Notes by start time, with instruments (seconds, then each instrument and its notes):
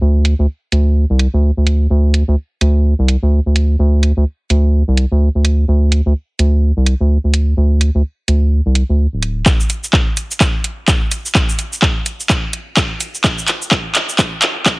0.01 analog synth bass D2
0.25 closed hi-hat
0.39 analog synth bass D2
0.72 analog synth bass D2, closed hi-hat
1.10 analog synth bass C2
1.19 closed hi-hat
1.34 analog synth bass D2
1.57 analog synth bass D2
1.67 closed hi-hat
1.90 analog synth bass D2
2.14 closed hi-hat
2.28 analog synth bass D2
2.61 analog synth bass D2, closed hi-hat
2.99 analog synth bass C2
3.08 closed hi-hat
3.23 analog synth bass D2
3.46 analog synth bass D2
3.56 closed hi-hat
3.79 analog synth bass D2
4.03 closed hi-hat
4.17 analog synth bass D2
4.50 analog synth bass D2, closed hi-hat
4.88 analog synth bass C2
4.97 closed hi-hat
5.12 analog synth bass D2
5.35 analog synth bass D2
5.45 closed hi-hat
5.68 analog synth bass D2
5.92 closed hi-hat
6.06 analog synth bass D2
6.39 analog synth bass D2, closed hi-hat
6.77 analog synth bass C2
6.86 closed hi-hat
7.00 analog synth bass D2
7.24 analog synth bass D2
7.34 closed hi-hat
7.57 analog synth bass D2
7.81 closed hi-hat
7.95 analog synth bass D2
8.28 analog synth bass D2, closed hi-hat
8.66 analog synth bass C2
8.75 closed hi-hat
8.89 analog synth bass D2
9.13 analog synth bass D1
9.22 closed hi-hat
9.46 kick, clap, shaker
9.60 shaker
9.70 closed hi-hat, shaker
9.84 shaker
9.93 kick, clap
10.17 closed hi-hat, shaker
10.31 shaker
10.41 kick, clap, shaker
10.64 closed hi-hat
10.88 kick, clap, shaker
11.11 closed hi-hat, shaker
11.26 shaker
11.35 kick, clap, shaker
11.49 shaker
11.59 closed hi-hat, shaker
11.73 shaker
11.82 kick, clap
12.06 closed hi-hat, shaker
12.20 shaker
12.30 kick, clap, shaker
12.53 closed hi-hat
12.77 kick, clap, shaker
13.01 closed hi-hat, shaker
13.15 shaker
13.24 kick, clap, shaker
13.38 shaker
13.48 clap, closed hi-hat, shaker
13.62 shaker
13.71 kick, clap
13.95 clap, closed hi-hat, shaker
14.09 shaker
14.19 kick, clap, shaker
14.42 clap, closed hi-hat
14.66 kick, clap, shaker